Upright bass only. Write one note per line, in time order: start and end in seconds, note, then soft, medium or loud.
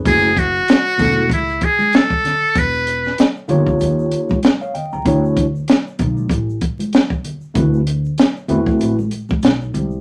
0.05 0.59 F#1 medium
0.99 1.26 E1 loud
1.30 1.56 C#2 medium
2.55 3.09 E1 medium
3.50 3.76 G1 loud
3.81 4.07 D#2 medium
4.93 5.04 C#2 medium
5.06 5.59 D2 medium
5.99 6.26 B1 loud
6.29 6.56 A1 loud
7.55 8.09 D2 loud
8.49 8.76 E2 loud
8.81 9.07 A1 medium
9.43 9.69 B1 medium
9.74 10.01 C2 loud